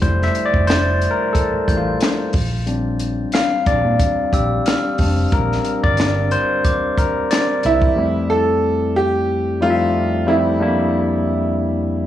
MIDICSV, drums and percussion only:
0, 0, Header, 1, 2, 480
1, 0, Start_track
1, 0, Key_signature, -1, "major"
1, 0, Tempo, 661521
1, 18, Time_signature, 4, 2, 24, 8
1, 8755, End_track
2, 0, Start_track
2, 0, Title_t, "Drums"
2, 16, Note_on_c, 9, 36, 106
2, 16, Note_on_c, 9, 42, 79
2, 88, Note_off_c, 9, 36, 0
2, 89, Note_off_c, 9, 42, 0
2, 160, Note_on_c, 9, 38, 37
2, 232, Note_off_c, 9, 38, 0
2, 253, Note_on_c, 9, 42, 67
2, 326, Note_off_c, 9, 42, 0
2, 390, Note_on_c, 9, 36, 81
2, 463, Note_off_c, 9, 36, 0
2, 490, Note_on_c, 9, 42, 82
2, 508, Note_on_c, 9, 38, 108
2, 562, Note_off_c, 9, 42, 0
2, 581, Note_off_c, 9, 38, 0
2, 737, Note_on_c, 9, 42, 65
2, 809, Note_off_c, 9, 42, 0
2, 978, Note_on_c, 9, 36, 87
2, 979, Note_on_c, 9, 42, 83
2, 1051, Note_off_c, 9, 36, 0
2, 1052, Note_off_c, 9, 42, 0
2, 1218, Note_on_c, 9, 36, 83
2, 1225, Note_on_c, 9, 42, 67
2, 1291, Note_off_c, 9, 36, 0
2, 1297, Note_off_c, 9, 42, 0
2, 1455, Note_on_c, 9, 42, 101
2, 1470, Note_on_c, 9, 38, 115
2, 1528, Note_off_c, 9, 42, 0
2, 1542, Note_off_c, 9, 38, 0
2, 1690, Note_on_c, 9, 46, 79
2, 1698, Note_on_c, 9, 36, 109
2, 1762, Note_off_c, 9, 46, 0
2, 1770, Note_off_c, 9, 36, 0
2, 1938, Note_on_c, 9, 42, 73
2, 2011, Note_off_c, 9, 42, 0
2, 2173, Note_on_c, 9, 42, 67
2, 2246, Note_off_c, 9, 42, 0
2, 2410, Note_on_c, 9, 42, 77
2, 2428, Note_on_c, 9, 38, 109
2, 2482, Note_off_c, 9, 42, 0
2, 2501, Note_off_c, 9, 38, 0
2, 2658, Note_on_c, 9, 42, 72
2, 2659, Note_on_c, 9, 36, 91
2, 2731, Note_off_c, 9, 42, 0
2, 2732, Note_off_c, 9, 36, 0
2, 2899, Note_on_c, 9, 36, 92
2, 2899, Note_on_c, 9, 42, 83
2, 2972, Note_off_c, 9, 36, 0
2, 2972, Note_off_c, 9, 42, 0
2, 3140, Note_on_c, 9, 36, 82
2, 3145, Note_on_c, 9, 42, 64
2, 3212, Note_off_c, 9, 36, 0
2, 3217, Note_off_c, 9, 42, 0
2, 3380, Note_on_c, 9, 42, 96
2, 3394, Note_on_c, 9, 38, 118
2, 3452, Note_off_c, 9, 42, 0
2, 3467, Note_off_c, 9, 38, 0
2, 3615, Note_on_c, 9, 46, 78
2, 3620, Note_on_c, 9, 36, 88
2, 3687, Note_off_c, 9, 46, 0
2, 3692, Note_off_c, 9, 36, 0
2, 3861, Note_on_c, 9, 36, 108
2, 3862, Note_on_c, 9, 42, 82
2, 3934, Note_off_c, 9, 36, 0
2, 3935, Note_off_c, 9, 42, 0
2, 4006, Note_on_c, 9, 38, 39
2, 4079, Note_off_c, 9, 38, 0
2, 4097, Note_on_c, 9, 42, 75
2, 4169, Note_off_c, 9, 42, 0
2, 4236, Note_on_c, 9, 36, 90
2, 4308, Note_off_c, 9, 36, 0
2, 4333, Note_on_c, 9, 42, 83
2, 4352, Note_on_c, 9, 38, 108
2, 4406, Note_off_c, 9, 42, 0
2, 4425, Note_off_c, 9, 38, 0
2, 4580, Note_on_c, 9, 42, 68
2, 4653, Note_off_c, 9, 42, 0
2, 4822, Note_on_c, 9, 36, 88
2, 4822, Note_on_c, 9, 42, 85
2, 4894, Note_off_c, 9, 42, 0
2, 4895, Note_off_c, 9, 36, 0
2, 5061, Note_on_c, 9, 36, 81
2, 5066, Note_on_c, 9, 42, 66
2, 5134, Note_off_c, 9, 36, 0
2, 5139, Note_off_c, 9, 42, 0
2, 5302, Note_on_c, 9, 42, 100
2, 5317, Note_on_c, 9, 38, 115
2, 5375, Note_off_c, 9, 42, 0
2, 5389, Note_off_c, 9, 38, 0
2, 5538, Note_on_c, 9, 42, 78
2, 5610, Note_off_c, 9, 42, 0
2, 5672, Note_on_c, 9, 36, 77
2, 5744, Note_off_c, 9, 36, 0
2, 8755, End_track
0, 0, End_of_file